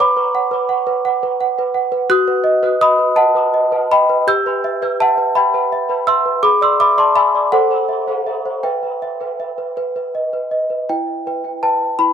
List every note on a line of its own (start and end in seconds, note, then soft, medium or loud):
0.00 0.15 B4 medium
0.00 0.66 B5 medium
0.00 0.70 D6 loud
0.17 0.45 B4 medium
0.35 0.62 F#5 medium
0.51 0.80 B4 medium
0.69 0.97 F#5 medium
0.87 1.15 B4 medium
1.05 1.33 F#5 medium
1.23 1.51 B4 medium
1.41 1.68 F#5 medium
1.59 1.86 B4 medium
1.74 2.03 F#5 medium
1.92 2.10 B4 medium
2.10 4.23 F#4 medium
2.10 2.77 D#6 medium
2.10 2.80 F#6 loud
2.28 2.56 B4 medium
2.44 2.73 D#5 medium
2.63 2.91 B4 medium
2.81 3.09 D#5 medium
2.81 3.15 B5 medium
2.81 3.17 D#6 loud
2.99 3.27 B4 medium
3.16 3.45 D#5 medium
3.16 3.86 F#5 medium
3.16 3.90 A5 loud
3.35 3.64 B4 medium
3.54 3.83 D#5 medium
3.72 4.02 B4 medium
3.92 4.21 D#5 medium
3.92 4.26 G5 medium
3.92 4.28 B5 loud
4.09 4.28 B4 medium
4.27 6.39 G4 medium
4.27 4.97 E6 medium
4.27 5.00 G6 loud
4.46 4.75 B4 medium
4.64 4.93 E5 medium
4.82 5.11 B4 medium
5.00 5.29 E5 medium
5.00 5.34 F#5 medium
5.00 5.36 A5 loud
5.18 5.46 B4 medium
5.35 5.64 E5 medium
5.35 6.03 G5 medium
5.35 6.07 B5 medium
5.54 5.82 B4 medium
5.72 6.00 E5 medium
5.89 6.18 B4 medium
6.07 6.36 E5 medium
6.07 6.41 C6 medium
6.07 6.43 E6 loud
6.26 6.43 B4 medium
6.43 7.49 G#4 medium
6.43 6.61 B5 medium
6.43 6.61 D6 loud
6.61 6.90 D5 medium
6.61 6.79 C6 medium
6.61 6.80 E6 loud
6.80 7.09 E5 medium
6.80 6.97 B5 medium
6.80 6.98 D6 loud
6.98 7.27 D5 medium
6.98 7.15 A5 medium
6.98 7.16 C6 medium
7.15 7.45 E5 medium
7.15 7.50 G#5 medium
7.15 7.52 B5 loud
7.35 7.52 D5 soft
7.52 8.61 A4 medium
7.52 7.69 C5 medium
7.52 8.64 F#5 loud
7.71 8.00 C5 soft
7.89 8.19 E5 medium
8.07 8.37 C5 soft
8.27 8.57 E5 medium
8.46 8.64 C5 soft
8.63 8.82 B4 medium
8.63 9.01 E5 soft
8.63 10.52 G5 medium
8.83 9.13 B4 soft
9.02 9.33 E5 medium
9.21 9.51 B4 soft
9.40 9.70 E5 soft
9.58 9.76 B4 soft
9.77 9.95 B4 medium
9.96 10.26 B4 soft
10.15 10.45 D#5 soft
10.33 10.64 B4 soft
10.51 10.82 D#5 soft
10.70 10.89 B4 soft
10.89 11.25 E4 medium
10.89 11.26 G5 medium
11.27 11.60 B4 soft
11.27 11.60 G5 soft
11.63 11.95 B4 soft
11.63 11.96 G5 medium
11.63 11.99 A5 medium
11.99 12.13 E4 medium
11.99 12.13 B5 medium